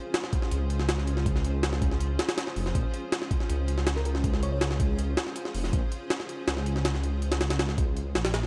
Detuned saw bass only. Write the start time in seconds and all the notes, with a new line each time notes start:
0.51 C#2
2.56 F1
2.75 A#1
3.49 C#2
5.55 F1
5.73 A#1
6.48 C#2
8.15 A#1